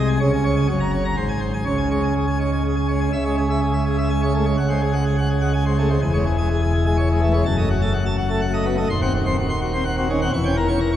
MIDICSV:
0, 0, Header, 1, 2, 480
1, 0, Start_track
1, 0, Tempo, 485044
1, 208, Time_signature, 3, 2, 24, 8
1, 4530, Tempo, 478469
1, 10938, End_track
2, 0, Start_track
2, 0, Title_t, "Pipe organ"
2, 0, Program_c, 0, 19
2, 0, Note_on_c, 0, 36, 72
2, 0, Note_on_c, 0, 48, 75
2, 0, Note_on_c, 0, 56, 79
2, 79, Note_on_c, 0, 80, 72
2, 167, Note_off_c, 0, 36, 0
2, 168, Note_off_c, 0, 48, 0
2, 171, Note_off_c, 0, 56, 0
2, 184, Note_off_c, 0, 80, 0
2, 197, Note_on_c, 0, 37, 77
2, 200, Note_on_c, 0, 49, 80
2, 200, Note_on_c, 0, 73, 75
2, 309, Note_off_c, 0, 73, 0
2, 326, Note_on_c, 0, 80, 93
2, 431, Note_off_c, 0, 80, 0
2, 440, Note_on_c, 0, 73, 74
2, 547, Note_off_c, 0, 73, 0
2, 559, Note_on_c, 0, 80, 68
2, 660, Note_off_c, 0, 37, 0
2, 661, Note_off_c, 0, 80, 0
2, 662, Note_off_c, 0, 49, 0
2, 674, Note_on_c, 0, 42, 76
2, 675, Note_on_c, 0, 73, 65
2, 677, Note_on_c, 0, 30, 72
2, 783, Note_off_c, 0, 73, 0
2, 794, Note_on_c, 0, 82, 80
2, 902, Note_off_c, 0, 82, 0
2, 917, Note_on_c, 0, 73, 67
2, 1023, Note_off_c, 0, 73, 0
2, 1038, Note_on_c, 0, 82, 63
2, 1138, Note_off_c, 0, 42, 0
2, 1138, Note_off_c, 0, 82, 0
2, 1139, Note_off_c, 0, 30, 0
2, 1157, Note_on_c, 0, 32, 71
2, 1157, Note_on_c, 0, 44, 71
2, 1158, Note_on_c, 0, 72, 59
2, 1263, Note_off_c, 0, 72, 0
2, 1274, Note_on_c, 0, 80, 74
2, 1382, Note_off_c, 0, 80, 0
2, 1388, Note_on_c, 0, 72, 65
2, 1499, Note_off_c, 0, 72, 0
2, 1521, Note_on_c, 0, 80, 64
2, 1622, Note_off_c, 0, 80, 0
2, 1623, Note_off_c, 0, 32, 0
2, 1623, Note_off_c, 0, 44, 0
2, 1639, Note_on_c, 0, 37, 60
2, 1639, Note_on_c, 0, 49, 65
2, 1640, Note_on_c, 0, 73, 56
2, 1747, Note_off_c, 0, 73, 0
2, 1759, Note_on_c, 0, 80, 78
2, 1866, Note_off_c, 0, 80, 0
2, 1889, Note_on_c, 0, 56, 52
2, 1893, Note_on_c, 0, 73, 59
2, 1995, Note_off_c, 0, 73, 0
2, 2007, Note_on_c, 0, 80, 55
2, 2100, Note_off_c, 0, 56, 0
2, 2111, Note_off_c, 0, 80, 0
2, 2130, Note_on_c, 0, 68, 56
2, 2233, Note_off_c, 0, 68, 0
2, 2249, Note_on_c, 0, 80, 50
2, 2353, Note_off_c, 0, 80, 0
2, 2371, Note_on_c, 0, 56, 53
2, 2373, Note_on_c, 0, 73, 60
2, 2476, Note_off_c, 0, 73, 0
2, 2497, Note_on_c, 0, 80, 52
2, 2583, Note_off_c, 0, 56, 0
2, 2599, Note_off_c, 0, 80, 0
2, 2618, Note_on_c, 0, 68, 55
2, 2721, Note_off_c, 0, 68, 0
2, 2733, Note_on_c, 0, 80, 51
2, 2839, Note_off_c, 0, 80, 0
2, 2853, Note_on_c, 0, 56, 56
2, 2854, Note_on_c, 0, 73, 59
2, 2959, Note_off_c, 0, 73, 0
2, 2976, Note_on_c, 0, 80, 56
2, 3051, Note_off_c, 0, 37, 0
2, 3051, Note_off_c, 0, 49, 0
2, 3056, Note_off_c, 0, 56, 0
2, 3076, Note_off_c, 0, 80, 0
2, 3093, Note_on_c, 0, 37, 64
2, 3094, Note_on_c, 0, 49, 66
2, 3094, Note_on_c, 0, 76, 63
2, 3199, Note_off_c, 0, 76, 0
2, 3217, Note_on_c, 0, 73, 63
2, 3218, Note_on_c, 0, 56, 50
2, 3321, Note_off_c, 0, 73, 0
2, 3322, Note_off_c, 0, 56, 0
2, 3338, Note_on_c, 0, 68, 62
2, 3442, Note_off_c, 0, 68, 0
2, 3461, Note_on_c, 0, 76, 56
2, 3462, Note_on_c, 0, 56, 50
2, 3564, Note_off_c, 0, 56, 0
2, 3564, Note_off_c, 0, 76, 0
2, 3576, Note_on_c, 0, 68, 57
2, 3681, Note_off_c, 0, 68, 0
2, 3695, Note_on_c, 0, 76, 53
2, 3801, Note_off_c, 0, 76, 0
2, 3817, Note_on_c, 0, 68, 59
2, 3922, Note_off_c, 0, 68, 0
2, 3939, Note_on_c, 0, 76, 58
2, 3940, Note_on_c, 0, 56, 53
2, 4043, Note_off_c, 0, 76, 0
2, 4044, Note_off_c, 0, 56, 0
2, 4055, Note_on_c, 0, 80, 79
2, 4161, Note_off_c, 0, 80, 0
2, 4178, Note_on_c, 0, 56, 51
2, 4179, Note_on_c, 0, 73, 56
2, 4282, Note_off_c, 0, 56, 0
2, 4283, Note_off_c, 0, 73, 0
2, 4297, Note_on_c, 0, 57, 54
2, 4300, Note_on_c, 0, 68, 66
2, 4396, Note_off_c, 0, 57, 0
2, 4403, Note_off_c, 0, 68, 0
2, 4410, Note_on_c, 0, 73, 61
2, 4411, Note_on_c, 0, 56, 55
2, 4493, Note_off_c, 0, 37, 0
2, 4493, Note_off_c, 0, 49, 0
2, 4512, Note_off_c, 0, 56, 0
2, 4512, Note_off_c, 0, 73, 0
2, 4529, Note_on_c, 0, 78, 62
2, 4530, Note_on_c, 0, 49, 65
2, 4531, Note_on_c, 0, 37, 68
2, 4637, Note_off_c, 0, 78, 0
2, 4651, Note_on_c, 0, 56, 51
2, 4651, Note_on_c, 0, 72, 63
2, 4758, Note_off_c, 0, 56, 0
2, 4758, Note_off_c, 0, 72, 0
2, 4766, Note_on_c, 0, 68, 71
2, 4875, Note_off_c, 0, 68, 0
2, 4884, Note_on_c, 0, 56, 52
2, 4885, Note_on_c, 0, 78, 58
2, 4994, Note_off_c, 0, 56, 0
2, 4994, Note_off_c, 0, 78, 0
2, 5008, Note_on_c, 0, 68, 65
2, 5116, Note_off_c, 0, 68, 0
2, 5136, Note_on_c, 0, 78, 59
2, 5241, Note_off_c, 0, 78, 0
2, 5252, Note_on_c, 0, 68, 68
2, 5359, Note_off_c, 0, 68, 0
2, 5368, Note_on_c, 0, 56, 52
2, 5370, Note_on_c, 0, 78, 56
2, 5477, Note_off_c, 0, 56, 0
2, 5478, Note_off_c, 0, 78, 0
2, 5488, Note_on_c, 0, 80, 87
2, 5597, Note_off_c, 0, 80, 0
2, 5614, Note_on_c, 0, 72, 62
2, 5617, Note_on_c, 0, 56, 55
2, 5721, Note_off_c, 0, 72, 0
2, 5723, Note_off_c, 0, 56, 0
2, 5739, Note_on_c, 0, 68, 63
2, 5741, Note_on_c, 0, 57, 57
2, 5840, Note_off_c, 0, 57, 0
2, 5844, Note_off_c, 0, 68, 0
2, 5856, Note_on_c, 0, 56, 61
2, 5857, Note_on_c, 0, 72, 71
2, 5933, Note_off_c, 0, 49, 0
2, 5934, Note_off_c, 0, 37, 0
2, 5957, Note_off_c, 0, 56, 0
2, 5957, Note_off_c, 0, 72, 0
2, 5977, Note_on_c, 0, 28, 70
2, 5977, Note_on_c, 0, 80, 89
2, 5978, Note_on_c, 0, 40, 73
2, 6083, Note_off_c, 0, 80, 0
2, 6094, Note_on_c, 0, 73, 64
2, 6095, Note_on_c, 0, 56, 57
2, 6202, Note_off_c, 0, 73, 0
2, 6203, Note_off_c, 0, 56, 0
2, 6221, Note_on_c, 0, 68, 66
2, 6326, Note_off_c, 0, 68, 0
2, 6334, Note_on_c, 0, 56, 53
2, 6337, Note_on_c, 0, 80, 59
2, 6443, Note_off_c, 0, 56, 0
2, 6444, Note_off_c, 0, 80, 0
2, 6460, Note_on_c, 0, 68, 61
2, 6567, Note_off_c, 0, 68, 0
2, 6579, Note_on_c, 0, 80, 67
2, 6686, Note_off_c, 0, 80, 0
2, 6697, Note_on_c, 0, 68, 76
2, 6805, Note_off_c, 0, 68, 0
2, 6816, Note_on_c, 0, 56, 56
2, 6820, Note_on_c, 0, 80, 68
2, 6924, Note_off_c, 0, 56, 0
2, 6926, Note_off_c, 0, 80, 0
2, 6933, Note_on_c, 0, 73, 71
2, 7042, Note_off_c, 0, 73, 0
2, 7054, Note_on_c, 0, 68, 59
2, 7056, Note_on_c, 0, 56, 59
2, 7162, Note_off_c, 0, 56, 0
2, 7162, Note_off_c, 0, 68, 0
2, 7172, Note_on_c, 0, 52, 77
2, 7175, Note_on_c, 0, 57, 61
2, 7277, Note_off_c, 0, 57, 0
2, 7280, Note_off_c, 0, 52, 0
2, 7298, Note_on_c, 0, 56, 63
2, 7299, Note_on_c, 0, 73, 74
2, 7376, Note_off_c, 0, 28, 0
2, 7377, Note_off_c, 0, 40, 0
2, 7399, Note_off_c, 0, 56, 0
2, 7399, Note_off_c, 0, 73, 0
2, 7418, Note_on_c, 0, 81, 91
2, 7419, Note_on_c, 0, 30, 72
2, 7419, Note_on_c, 0, 42, 76
2, 7523, Note_off_c, 0, 81, 0
2, 7537, Note_on_c, 0, 57, 65
2, 7539, Note_on_c, 0, 75, 75
2, 7643, Note_off_c, 0, 57, 0
2, 7644, Note_off_c, 0, 75, 0
2, 7661, Note_on_c, 0, 66, 71
2, 7765, Note_off_c, 0, 66, 0
2, 7777, Note_on_c, 0, 57, 63
2, 7779, Note_on_c, 0, 81, 69
2, 7883, Note_off_c, 0, 57, 0
2, 7884, Note_off_c, 0, 81, 0
2, 7896, Note_on_c, 0, 66, 67
2, 8002, Note_off_c, 0, 66, 0
2, 8020, Note_on_c, 0, 81, 69
2, 8124, Note_off_c, 0, 81, 0
2, 8140, Note_on_c, 0, 66, 79
2, 8244, Note_off_c, 0, 66, 0
2, 8261, Note_on_c, 0, 81, 71
2, 8262, Note_on_c, 0, 57, 66
2, 8365, Note_off_c, 0, 81, 0
2, 8366, Note_off_c, 0, 57, 0
2, 8380, Note_on_c, 0, 78, 82
2, 8485, Note_off_c, 0, 78, 0
2, 8501, Note_on_c, 0, 57, 66
2, 8502, Note_on_c, 0, 75, 74
2, 8606, Note_off_c, 0, 57, 0
2, 8606, Note_off_c, 0, 75, 0
2, 8623, Note_on_c, 0, 59, 67
2, 8626, Note_on_c, 0, 66, 79
2, 8721, Note_off_c, 0, 59, 0
2, 8728, Note_off_c, 0, 66, 0
2, 8743, Note_on_c, 0, 75, 79
2, 8745, Note_on_c, 0, 57, 72
2, 8816, Note_off_c, 0, 30, 0
2, 8816, Note_off_c, 0, 42, 0
2, 8841, Note_off_c, 0, 75, 0
2, 8842, Note_off_c, 0, 57, 0
2, 8864, Note_on_c, 0, 27, 80
2, 8865, Note_on_c, 0, 39, 77
2, 8865, Note_on_c, 0, 84, 93
2, 8967, Note_off_c, 0, 84, 0
2, 8983, Note_on_c, 0, 60, 63
2, 8984, Note_on_c, 0, 78, 72
2, 9086, Note_off_c, 0, 60, 0
2, 9086, Note_off_c, 0, 78, 0
2, 9106, Note_on_c, 0, 66, 86
2, 9208, Note_off_c, 0, 66, 0
2, 9222, Note_on_c, 0, 84, 69
2, 9223, Note_on_c, 0, 60, 69
2, 9325, Note_off_c, 0, 84, 0
2, 9326, Note_off_c, 0, 60, 0
2, 9345, Note_on_c, 0, 66, 78
2, 9447, Note_off_c, 0, 66, 0
2, 9461, Note_on_c, 0, 84, 66
2, 9565, Note_off_c, 0, 84, 0
2, 9581, Note_on_c, 0, 66, 78
2, 9685, Note_off_c, 0, 66, 0
2, 9699, Note_on_c, 0, 84, 65
2, 9703, Note_on_c, 0, 60, 64
2, 9803, Note_off_c, 0, 84, 0
2, 9806, Note_off_c, 0, 60, 0
2, 9819, Note_on_c, 0, 78, 85
2, 9923, Note_off_c, 0, 78, 0
2, 9941, Note_on_c, 0, 60, 67
2, 9943, Note_on_c, 0, 66, 74
2, 10044, Note_off_c, 0, 60, 0
2, 10045, Note_off_c, 0, 66, 0
2, 10066, Note_on_c, 0, 61, 65
2, 10068, Note_on_c, 0, 51, 80
2, 10161, Note_off_c, 0, 61, 0
2, 10167, Note_off_c, 0, 51, 0
2, 10186, Note_on_c, 0, 60, 75
2, 10186, Note_on_c, 0, 78, 74
2, 10255, Note_off_c, 0, 27, 0
2, 10256, Note_off_c, 0, 39, 0
2, 10281, Note_off_c, 0, 60, 0
2, 10281, Note_off_c, 0, 78, 0
2, 10305, Note_on_c, 0, 85, 106
2, 10306, Note_on_c, 0, 28, 84
2, 10306, Note_on_c, 0, 40, 82
2, 10406, Note_off_c, 0, 85, 0
2, 10424, Note_on_c, 0, 79, 82
2, 10425, Note_on_c, 0, 61, 74
2, 10525, Note_off_c, 0, 61, 0
2, 10525, Note_off_c, 0, 79, 0
2, 10540, Note_on_c, 0, 70, 75
2, 10642, Note_off_c, 0, 70, 0
2, 10653, Note_on_c, 0, 85, 75
2, 10655, Note_on_c, 0, 61, 60
2, 10758, Note_off_c, 0, 85, 0
2, 10759, Note_off_c, 0, 61, 0
2, 10776, Note_on_c, 0, 70, 66
2, 10879, Note_off_c, 0, 70, 0
2, 10891, Note_on_c, 0, 85, 64
2, 10938, Note_off_c, 0, 28, 0
2, 10938, Note_off_c, 0, 40, 0
2, 10938, Note_off_c, 0, 85, 0
2, 10938, End_track
0, 0, End_of_file